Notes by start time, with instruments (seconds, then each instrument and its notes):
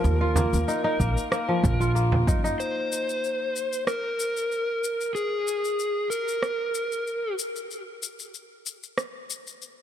Already playing: kora F3 A#3 D#4 F4, electric slide guitar A#4
0.04 upright bass D#2, shaker
0.21 kora F4
0.36 kora A#3, frame drum, shaker
0.53 upright bass D#2, shaker
0.68 kora D#4, shaker
0.84 kora D#4
1.00 upright bass A#1, kora A#3, kick, shaker
1.17 shaker
1.31 kora A#3, cross-stick, shaker
1.48 kora F3
1.63 upright bass A#1, kick, frame drum, shaker
1.80 kora F4, shaker
1.95 kora A#3, shaker
2.12 frame drum
2.27 upright bass F#2, kora D#4, kick, shaker
2.44 kora D#4, shaker
2.60 electric slide guitar C5, shaker
2.92 shaker
3.09 shaker
3.24 shaker
3.56 shaker
3.73 shaker
3.87 electric slide guitar A#4, cross-stick, shaker
4.20 shaker
4.37 shaker
4.52 shaker
4.84 shaker
5.01 shaker
5.15 electric slide guitar G#4, shaker
5.47 shaker
5.64 shaker
5.79 shaker
6.10 electric slide guitar A#4, shaker
6.28 shaker
6.43 cross-stick, shaker
6.75 shaker
6.92 shaker
7.07 shaker
7.39 shaker
7.56 shaker
7.71 shaker
8.03 shaker
8.19 shaker
8.34 shaker
8.66 shaker
8.83 shaker
8.98 cross-stick, shaker
9.30 shaker
9.47 shaker
9.62 shaker